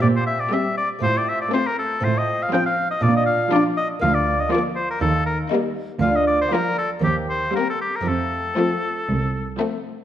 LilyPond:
<<
  \new Staff \with { instrumentName = "Oboe" } { \time 4/4 \key f \major \tempo 4 = 120 d''16 c''16 e''16 d''16 e''8 d''8 c''16 d''16 e''16 d''16 c''16 bes'16 a'8 | \key bes \major c''16 ees''8 f''16 g''16 f''8 ees''16 d''16 ees''16 f''8 d''8 ees''8 | f''16 d''8 ees''16 d''8 c''16 bes'16 a'8 bes'8 r4 | f''16 ees''16 d''16 c''16 bes'8 a'8 g'8 c''8 bes'16 a'16 g'16 bes'16 |
a'2. r4 | }
  \new Staff \with { instrumentName = "Violin section" } { \time 4/4 \key f \major r4 g'4 r4 f'4 | \key bes \major r4 f'4 r4 f'4 | r4 f'4 r4 ees'4 | r4 f'4 r4 c'4 |
r4 c'4 r4 c'4 | }
  \new Staff \with { instrumentName = "Lute" } { \time 4/4 \key f \major <c' g'>2 <a c' f'>2 | \key bes \major <c' f'>2 <d' f'>2 | <bes f'>2 <bes ees'>2 | <bes d' f'>2 <bes c' g'>2 |
<a c' f'>1 | }
  \new Staff \with { instrumentName = "Lute" } { \clef bass \time 4/4 \key f \major bes,4 r4 a,4 r4 | \key bes \major a,4 r4 bes,4 r4 | d,4 r4 ees,4 r4 | d,4 r4 ees,4 r4 |
f,4 r2. | }
  \new Staff \with { instrumentName = "Violin section" } { \time 4/4 \key f \major r4 c'4 r4 c'4 | \key bes \major r4 c'4 r4 d'4 | r4 bes4 r4 bes4 | r4 bes4 r4 bes4 |
r4 a4 r4 a4 | }
  \new Staff \with { instrumentName = "Viola section" } { \clef bass \time 4/4 \key f \major r4 g4 r4 a4 | \key bes \major r4 f4 r4 f4 | r4 f4 r4 g4 | r4 f4 r4 g4 |
r4 f4 r4 f4 | }
  \new Staff \with { instrumentName = "Cello section" } { \clef bass \time 4/4 \key f \major bes,4 r4 a,4 r4 | \key bes \major a,4 r4 bes,4 r4 | d,4 r4 ees,4 r4 | d,4 r4 ees,4 r4 |
f,4 r4 c,4 r4 | }
>>